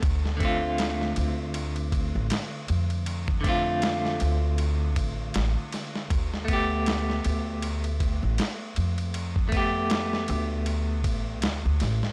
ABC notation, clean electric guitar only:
X:1
M:4/4
L:1/8
Q:"Swing 16ths" 1/4=79
K:Ddor
V:1 name="Clean electric guitar"
z [D,A,CF]6- [D,A,CF]- | [D,A,CF] [D,A,CF]6- [D,A,CF] | z [A,B,G]6- [A,B,G]- | [A,B,G] [A,B,G]6- [A,B,G] |]